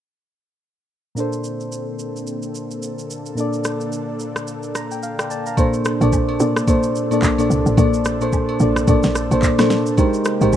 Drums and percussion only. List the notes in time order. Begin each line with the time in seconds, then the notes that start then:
1.17 shaker
1.33 shaker
1.44 shaker
1.60 shaker
1.72 shaker
1.99 shaker
2.16 shaker
2.27 shaker
2.43 shaker
2.55 shaker
2.71 shaker
2.82 shaker
2.99 shaker
3.10 shaker
3.26 shaker
3.37 shaker
3.53 shaker
3.64 cross-stick, shaker
3.81 shaker
3.92 shaker
4.19 shaker
4.36 cross-stick, shaker
4.47 shaker
4.63 shaker
4.75 cross-stick, shaker
4.91 shaker
5.03 shaker
5.19 cross-stick, shaker
5.31 shaker
5.46 shaker
5.57 kick, high agogo, shaker
5.74 shaker
5.85 cross-stick, shaker
6.01 high agogo, shaker
6.13 kick, low woodblock, shaker
6.29 high agogo
6.40 shaker
6.56 cross-stick, shaker
6.67 kick, high agogo, shaker
6.83 shaker
6.95 shaker
7.11 high agogo, shaker
7.23 kick, clap, shaker
7.38 high agogo, shaker
7.51 shaker
7.66 shaker
7.77 kick, high agogo, shaker
7.94 shaker
8.05 cross-stick, shaker
8.21 high agogo, shaker
8.33 kick, low woodblock, shaker
8.49 high agogo
8.60 shaker
8.76 cross-stick, shaker
8.88 kick, high agogo, shaker
9.03 snare, shaker
9.15 cross-stick, shaker
9.31 high agogo, shaker
9.43 kick, clap, shaker
9.59 cross-stick, snare, high agogo, shaker
9.70 snare, shaker
9.86 shaker
9.98 kick, high agogo, shaker
10.14 shaker
10.25 cross-stick, shaker
10.41 high agogo, shaker
10.53 kick, low woodblock, shaker